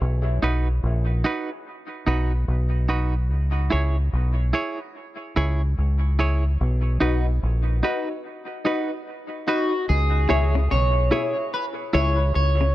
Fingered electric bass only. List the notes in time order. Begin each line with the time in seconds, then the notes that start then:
0.01 B1
0.43 B1
0.83 A#1
2.07 B1
2.48 B1
3.31 C#2
3.73 C#2
4.13 B1
5.37 C#2
5.78 C#2
6.61 B1
7.01 B1
7.43 A#1
9.90 C#2
10.30 C#2
10.72 B1
11.95 C#2
12.36 C#2